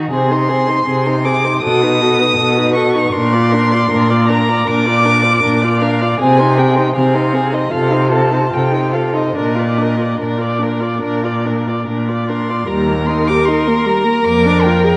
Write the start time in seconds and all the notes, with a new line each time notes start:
0.11 C3 C4 G#4 C6
0.31 D#4 C5
0.49 C4 G#4
0.68 D#4 C5
0.87 C3 C4 G#4
1.06 D#4 C5
1.25 C4 G#4 D6
1.44 D#4 C5
1.62 B2 F#4 A4 D#6
1.82 D#4 B4
2.01 F#4 A4
2.20 D#4 B4
2.38 B2 F#4 A4
2.57 D#4 B4
2.74 F#4 A4 C#6
2.95 D#4 B4
3.12 A#2 D4 A#4 C6
3.33 F4 D5
3.52 D4 A#4
3.71 F4 D5
3.91 A#2 D4 A#4
4.10 F4 D5
4.28 D4 A#4 A#5
4.49 F4 D5
4.67 A#2 D4 A#4 D6
4.86 F4 D5
5.05 D4 A#4
5.22 F4 D5
5.42 A#2 D4 A#4
5.62 F4 D5
5.80 D4 A#4 F5
6.01 F4 D5
6.19 C3 C4 G#4 G#5
6.38 D#4 C5
6.57 C4 G#4 G5
6.76 D#4 C5
6.96 C3 C4 G#4 F5
7.15 D#4 C5
7.33 C4 G#4
7.52 D#4 C5 D#5
7.71 C3 F4 A4 F5
7.91 D#4 C5
8.10 F4 A4 A5
8.31 D#4 C5
8.50 F4 A4 G5
8.55 C3
8.71 D#4 C5
8.93 F4 A4 F5
9.13 D#4 C5 D#5
9.36 A#2 D4 A#4 D#5
9.55 F4 D5
9.78 D4
9.82 A#4
9.97 F4
10.02 D5
10.18 A#2 D4 A#4
10.22 D5
10.38 F4 D5
10.59 D4 A#4
10.80 F4 D5
11.02 A#2 D4 A#4
11.24 F4 D5
11.46 D4 A#4
11.66 F4 D5
11.87 A#2 D4 A#4
12.09 F4 D5
12.29 D4 A#4 C6
12.49 F4 D5
12.68 D#2 G3 A#4 A#5
12.89 A#3
13.06 D#4 C6
13.27 G4 D6
13.45 D#4 C6
13.68 A#3
13.85 G3 A#5
14.05 A#3
14.25 F2 A#3 D6
14.46 D4
14.62 F4 G5
14.84 G#4